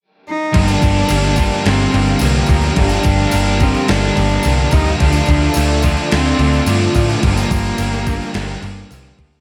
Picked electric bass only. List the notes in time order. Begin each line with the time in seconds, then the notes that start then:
0.55 G1
0.83 G1
1.10 G1
1.66 G1
1.94 G1
2.21 C2
2.49 D2
2.77 G1
3.05 G1
3.34 G1
3.89 G1
4.17 G1
4.46 C2
4.73 D2
5.01 D2
5.28 D2
5.57 D2
6.13 D2
6.39 D2
6.67 G2
6.96 A2
7.23 G1
7.51 G1
7.79 G1
8.35 G1
8.63 G1
8.91 C2
9.19 D2